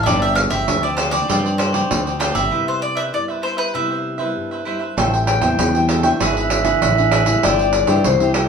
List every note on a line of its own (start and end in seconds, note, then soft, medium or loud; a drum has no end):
0.03 0.46 G1 medium
0.03 0.65 G2 medium
0.03 0.63 F3 soft
0.03 0.20 F4 medium
0.03 0.21 G4 medium
0.03 0.21 C5 medium
0.03 0.21 D5 medium
0.03 0.07 E5 medium
0.03 pandeiro medium
0.07 0.63 C4 medium
0.07 0.63 D4 medium
0.07 0.21 D5 medium
0.22 0.35 G4 soft
0.22 0.35 C5 soft
0.22 0.36 D5 soft
0.22 0.35 E5 medium
0.22 pandeiro soft
0.35 0.40 F5 medium
0.35 muted cavaquinho stroke soft
0.35 pandeiro medium
0.50 0.65 G1 medium
0.50 0.67 G4 medium
0.50 0.66 C5 medium
0.50 0.65 D5 medium
0.50 0.83 E5 medium
0.50 pandeiro medium
0.67 1.20 D2 medium
0.67 1.26 D3 medium
0.67 1.25 F3 soft
0.67 1.25 C4 medium
0.67 1.25 D4 medium
0.67 muted cavaquinho stroke soft
0.67 pandeiro medium
0.83 0.96 G4 soft
0.83 0.97 C5 soft
0.83 0.96 D5 medium
0.83 0.97 D5 soft
0.83 pandeiro soft
0.97 1.12 F4 soft
0.97 1.12 G4 soft
0.97 1.11 C5 medium
0.97 1.10 D5 soft
0.97 pandeiro medium
1.11 1.28 G4 soft
1.11 1.27 C5 medium
1.11 1.27 D5 medium
1.11 1.55 D5 medium
1.11 pandeiro medium
1.28 1.88 G2 soft
1.28 1.82 G2 medium
1.28 1.58 F3 medium
1.28 1.58 C4 soft
1.28 1.59 D4 medium
1.28 1.43 F4 medium
1.28 1.43 G4 medium
1.28 1.44 C5 medium
1.28 1.43 D5 medium
1.28 pandeiro medium
1.44 1.74 G4 soft
1.44 1.73 C5 soft
1.44 1.71 D5 soft
1.44 pandeiro soft
1.58 2.16 C5 medium
1.58 pandeiro medium
1.73 2.16 F3 medium
1.73 2.16 C4 medium
1.73 2.16 D4 medium
1.73 2.04 G4 medium
1.73 2.04 C5 medium
1.73 2.03 D5 medium
1.73 pandeiro medium
1.91 2.30 D2 medium
1.91 2.49 D3 soft
1.91 pandeiro medium
2.06 2.19 G4 soft
2.06 2.20 C5 soft
2.06 2.20 D5 soft
2.06 pandeiro soft
2.19 2.46 F3 medium
2.19 2.47 C4 medium
2.19 2.47 D4 medium
2.19 2.34 F4 medium
2.19 2.35 G4 medium
2.19 2.34 C5 medium
2.19 2.32 D5 medium
2.19 2.25 G5 medium
2.19 pandeiro medium
2.34 2.49 G1 medium
2.34 2.50 G4 soft
2.34 2.50 C5 soft
2.34 2.49 D5 soft
2.34 2.64 E5 medium
2.34 pandeiro medium
2.51 3.10 C3 medium
2.51 2.91 G3 medium
2.51 2.92 B3 soft
2.51 2.66 E4 medium
2.51 2.92 E4 medium
2.51 2.66 B4 medium
2.51 2.66 C5 medium
2.51 2.66 E5 medium
2.67 2.80 B4 soft
2.67 2.80 C5 soft
2.67 2.82 C5 medium
2.67 2.81 E5 soft
2.81 2.98 D5 medium
2.81 muted cavaquinho stroke soft
2.95 3.12 B4 medium
2.95 3.11 C5 medium
2.95 3.11 E5 medium
2.95 3.02 E5 medium
3.13 3.72 G2 soft
3.13 3.70 G3 medium
3.13 3.70 B3 medium
3.13 3.70 E4 medium
3.13 3.22 D5 medium
3.13 muted cavaquinho stroke soft
3.28 3.42 B4 soft
3.28 3.42 C5 soft
3.28 3.43 E5 soft
3.42 3.57 E4 soft
3.42 3.58 B4 soft
3.42 3.58 C5 medium
3.42 3.57 C5 medium
3.42 3.56 E5 soft
3.57 3.73 B4 medium
3.57 3.73 C5 medium
3.57 3.72 E5 medium
3.74 4.33 C3 soft
3.74 4.16 G3 soft
3.74 4.16 B3 soft
3.74 3.88 E4 medium
3.74 4.16 E4 soft
3.74 3.89 B4 medium
3.74 3.89 C5 medium
3.74 4.63 E5 medium
3.74 3.88 E5 medium
3.90 4.19 B4 soft
3.90 4.18 C5 soft
3.90 4.17 E5 soft
4.18 4.61 G3 medium
4.18 4.61 B3 medium
4.18 4.61 E4 medium
4.18 4.50 B4 soft
4.18 4.49 C5 medium
4.18 4.49 E5 medium
4.36 4.94 G2 soft
4.51 4.65 B4 soft
4.51 4.66 C5 soft
4.51 4.65 E5 soft
4.65 4.84 G3 medium
4.65 4.84 B3 medium
4.65 4.80 E4 medium
4.65 4.85 E4 medium
4.65 4.81 B4 medium
4.65 4.79 C5 medium
4.65 4.78 E5 medium
4.79 4.96 B4 soft
4.79 4.96 C5 soft
4.79 4.95 E5 soft
4.97 5.37 A1 medium
4.97 5.56 A2 medium
4.97 5.38 G3 soft
4.97 5.39 C4 medium
4.97 5.39 E4 medium
4.97 5.11 A4 medium
4.97 5.12 C5 medium
4.97 5.12 E5 medium
4.97 5.12 G5 medium
4.97 pandeiro medium
5.13 5.26 C5 soft
5.13 5.27 E5 soft
5.13 5.27 G5 soft
5.13 pandeiro soft
5.27 5.85 G5 loud
5.27 muted cavaquinho stroke soft
5.27 pandeiro medium
5.41 5.55 E2 medium
5.41 5.68 G3 medium
5.41 5.68 C4 medium
5.41 5.69 E4 medium
5.41 5.58 C5 medium
5.41 5.57 E5 medium
5.41 5.57 G5 medium
5.41 pandeiro medium
5.58 6.11 E2 medium
5.58 6.01 E3 medium
5.58 muted cavaquinho stroke soft
5.58 pandeiro medium
5.74 6.00 G3 medium
5.74 6.00 C4 medium
5.74 6.00 E4 medium
5.74 5.88 C5 soft
5.74 5.89 E5 soft
5.74 5.89 G5 soft
5.74 pandeiro soft
5.89 6.03 A4 soft
5.89 6.04 C5 soft
5.89 6.03 E5 medium
5.89 6.02 G5 medium
5.89 pandeiro medium
6.02 6.60 E3 medium
6.02 6.60 B3 medium
6.02 6.60 D4 medium
6.02 6.19 C5 medium
6.02 6.19 E5 medium
6.02 6.18 G5 medium
6.02 pandeiro medium
6.20 6.73 G#1 medium
6.20 6.78 G#2 medium
6.20 6.34 D4 medium
6.20 6.35 G#4 medium
6.20 6.35 B4 medium
6.20 7.46 E5 loud
6.20 6.35 E5 medium
6.20 pandeiro medium
6.37 6.65 G#4 soft
6.37 6.64 B4 soft
6.37 6.63 E5 soft
6.37 pandeiro soft
6.50 pandeiro medium
6.64 6.91 E3 medium
6.64 6.91 B3 medium
6.64 6.91 D4 medium
6.64 6.96 G#4 medium
6.64 6.95 B4 medium
6.64 6.95 E5 medium
6.64 pandeiro medium
6.81 7.34 A1 medium
6.81 7.40 G#2 medium
6.81 pandeiro medium
6.97 7.23 E3 medium
6.97 7.23 B3 medium
6.97 7.23 D4 medium
6.97 7.11 G#4 soft
6.97 7.11 B4 soft
6.97 7.11 E5 soft
6.97 pandeiro soft
7.11 7.26 D4 medium
7.11 7.26 G#4 medium
7.11 7.26 B4 medium
7.11 7.24 E5 medium
7.11 pandeiro medium
7.26 7.83 G3 medium
7.26 7.83 C4 medium
7.26 7.84 E4 medium
7.26 7.42 G#4 soft
7.26 7.41 B4 soft
7.26 7.41 E5 soft
7.26 pandeiro medium
7.43 7.83 G1 medium
7.43 8.01 G2 medium
7.43 7.57 E4 medium
7.43 7.58 G4 medium
7.43 7.58 C5 medium
7.43 8.05 D5 loud
7.43 7.58 E5 medium
7.43 pandeiro medium
7.59 7.72 G4 soft
7.59 7.73 C5 soft
7.59 7.73 E5 soft
7.59 pandeiro soft
7.73 muted cavaquinho stroke soft
7.73 pandeiro medium
7.87 8.02 G2 medium
7.87 8.14 G3 medium
7.87 8.14 C4 medium
7.87 8.14 E4 medium
7.87 8.03 G4 medium
7.87 8.03 C5 medium
7.87 8.02 E5 medium
7.87 pandeiro medium
8.04 8.48 C2 medium
8.04 8.48 G2 medium
8.04 8.48 C5 medium
8.04 muted cavaquinho stroke soft
8.04 pandeiro medium
8.20 8.46 G3 medium
8.20 8.46 C4 medium
8.20 8.46 E4 medium
8.20 8.34 G4 soft
8.20 8.34 C5 soft
8.20 8.34 E5 soft
8.20 pandeiro soft
8.34 8.48 E4 soft
8.34 8.48 G4 medium
8.34 8.48 C5 medium
8.34 8.47 E5 medium
8.34 pandeiro medium